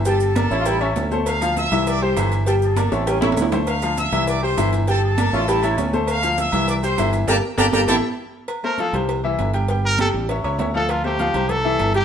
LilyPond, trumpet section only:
\new Staff \with { instrumentName = "Trumpet section" } { \time 4/4 \key g \dorian \tempo 4 = 199 <a' a''>8 <a' a''>2. r8 | f''4 <e'' e'''>4 <d'' d'''>8 <c'' c'''>4 r8 | <a' a''>8 <a' a''>2 r4. | f''4 <e'' e'''>4 <d'' d'''>8 <c'' c'''>4 r8 |
<a' a''>8 <a' a''>2. r8 | f''4 <e'' e'''>4 <d'' d'''>8 <c'' c'''>4 r8 | <g'' a'' bes''>8 r8 <g'' a'' bes''>8 <g'' a'' bes''>8 <e'' g'' a''>8 r4. | r1 |
r1 | r1 | }